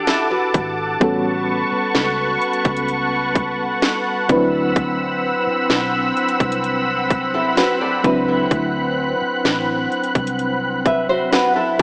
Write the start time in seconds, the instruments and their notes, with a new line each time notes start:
Already playing: fm electric piano D4 E4 F#4 G4 A4, analog synth pad A4 F#5 A5 D6, impact
0.07 nylon-string guitar E4 A4, snare, closed hi-hat
0.31 nylon-string guitar F#4 B4
0.54 fingered electric bass G#1, kick, closed hi-hat
1.00 fingered electric bass A1, fm electric piano G3 B3 C#4 F#4 A4, analog synth pad B4 C#6, kick, closed hi-hat
1.72 muted fingered electric bass stroke
1.95 fingered electric bass C#2, snare
2.42 closed hi-hat
2.53 closed hi-hat
2.65 fingered electric bass C#2, kick, closed hi-hat
2.77 closed hi-hat
2.88 closed hi-hat
3.35 kick, closed hi-hat
3.82 snare, closed hi-hat
4.29 fingered electric bass D2, fm electric piano F3 C4 D4 E4 B4, analog synth pad C4 B5 E6, kick, closed hi-hat
4.35 fm electric piano F#3
4.76 kick, closed hi-hat
5.47 muted fingered electric bass stroke
5.70 fingered electric bass B1, snare
6.17 closed hi-hat
6.29 closed hi-hat
6.40 fingered electric bass C2, kick, closed hi-hat
6.52 closed hi-hat
6.64 closed hi-hat
7.10 kick, closed hi-hat
7.34 nylon-string guitar E4 A4
7.57 nylon-string guitar F#4 B4, snare, closed hi-hat
7.81 nylon-string guitar A4 D5
8.04 fingered electric bass C#2, fm electric piano F#3 C4 D4 E4 B4, nylon-string guitar F#4 B4, analog synth pad F#6, kick, closed hi-hat
8.28 nylon-string guitar E4 A4
8.51 fingered electric bass D2, kick, closed hi-hat
9.22 muted fingered electric bass stroke
9.45 fingered electric bass A1, snare
9.92 closed hi-hat
10.04 closed hi-hat
10.15 fingered electric bass C2, kick, closed hi-hat
10.27 closed hi-hat
10.39 closed hi-hat
10.86 nylon-string guitar B4 E5, fm electric piano E5, kick, closed hi-hat
11.09 nylon-string guitar F#4 C5
11.32 nylon-string guitar F#4 B4, fm electric piano F#5, snare, closed hi-hat
11.56 nylon-string guitar E4 A4